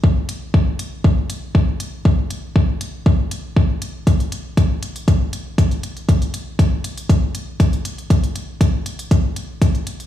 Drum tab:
HH |--x---x---x---x-|--x---x---x---x-|xxx-x-xxx-x-xxxx|xxx-x-xxx-x-xxxx|
BD |o---o---o---o---|o---o---o---o---|o---o---o---o---|o---o---o---o---|

HH |xxx-x-xxx-x-xxxx|
BD |o---o---o---o---|